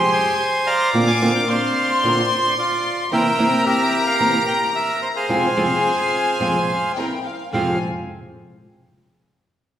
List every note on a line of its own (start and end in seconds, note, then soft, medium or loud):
0.00 0.34 G4 medium
0.00 0.34 G#4 medium
0.00 0.11 C5 medium
0.00 0.89 C6 loud
0.12 0.90 C5 medium
0.12 0.68 G#5 loud
0.67 1.48 D5 medium
0.67 1.48 F5 medium
0.67 1.05 A#5 loud
0.93 1.10 A#2 medium
0.93 1.10 D3 medium
0.93 1.11 A#3 medium
0.93 1.16 C4 medium
0.93 1.11 C4 medium
0.93 1.16 D4 medium
0.93 1.11 F4 medium
0.93 1.17 A#4 medium
0.93 1.44 D6 loud
1.07 1.33 G#5 loud
1.21 1.30 A#2 medium
1.21 1.30 D3 loud
1.21 1.30 A#3 loud
1.21 1.99 C4 medium
1.21 1.30 C4 loud
1.21 1.99 D4 medium
1.21 1.30 F4 loud
1.21 1.99 A#4 loud
1.35 1.41 G5 loud
1.48 2.54 C5 medium
1.48 2.54 D5 medium
1.48 2.26 F5 loud
1.48 3.11 C6 loud
2.03 2.20 A#2 medium
2.03 2.20 D3 medium
2.03 2.20 A#3 medium
2.03 2.26 C4 medium
2.03 2.20 C4 medium
2.03 2.26 D4 medium
2.03 2.21 F4 medium
2.03 2.26 A#4 medium
2.58 3.08 F4 medium
2.58 3.08 D5 loud
3.11 3.28 C3 medium
3.11 3.28 E3 medium
3.11 3.28 A#3 medium
3.11 3.34 C4 medium
3.11 3.28 C4 medium
3.11 3.34 E4 medium
3.11 3.28 E4 medium
3.11 3.34 A#4 medium
3.11 3.65 A#4 medium
3.11 3.64 E5 medium
3.11 3.62 G5 loud
3.11 5.30 A#5 loud
3.38 3.47 C3 loud
3.38 3.47 E3 medium
3.38 3.47 A#3 loud
3.38 4.15 C4 loud
3.38 3.48 C4 loud
3.38 4.15 E4 medium
3.38 3.48 E4 loud
3.38 4.16 A#4 loud
3.66 4.71 G4 medium
3.66 4.06 A#4 medium
3.66 4.03 E5 loud
4.07 5.12 A#4 medium
4.07 4.44 F5 loud
4.20 4.36 C3 medium
4.20 4.37 E3 medium
4.20 4.37 A#3 medium
4.20 4.42 C4 medium
4.20 4.37 C4 medium
4.20 4.43 E4 medium
4.20 4.37 E4 medium
4.20 4.42 A#4 medium
4.48 4.60 G5 loud
4.75 5.00 E5 loud
5.02 5.08 C5 medium
5.16 6.92 G#4 medium
5.16 6.92 C5 medium
5.16 6.92 F5 loud
5.29 5.46 F2 medium
5.29 5.46 C3 medium
5.29 5.46 F3 medium
5.29 5.46 G#3 medium
5.29 5.52 C4 medium
5.29 5.46 C4 medium
5.29 5.52 F4 soft
5.29 5.46 F4 medium
5.29 5.52 G#4 medium
5.29 6.96 G#5 loud
5.56 5.66 F2 medium
5.56 5.66 C3 loud
5.56 5.66 F3 loud
5.56 5.66 G#3 medium
5.56 6.35 C4 medium
5.56 5.66 C4 loud
5.56 6.35 F4 medium
5.56 5.66 F4 medium
5.56 6.35 G#4 loud
6.39 6.57 F2 medium
6.39 6.57 C3 medium
6.39 6.57 F3 medium
6.39 6.57 G#3 medium
6.39 6.63 C4 medium
6.39 6.57 C4 medium
6.39 6.63 F4 medium
6.39 6.57 F4 medium
6.39 6.63 G#4 medium
6.95 7.19 C4 medium
6.95 7.20 E4 medium
6.95 7.20 A#4 medium
6.95 7.24 G5 medium
7.25 7.53 F5 medium
7.53 7.75 F2 medium
7.53 7.75 C3 medium
7.53 7.76 F3 medium
7.53 7.76 G#3 medium
7.53 7.76 C4 medium
7.53 7.76 C4 loud
7.53 7.76 F4 soft
7.53 7.76 F4 loud
7.53 7.76 G#4 medium
7.53 7.79 F5 medium
7.53 7.79 G#5 medium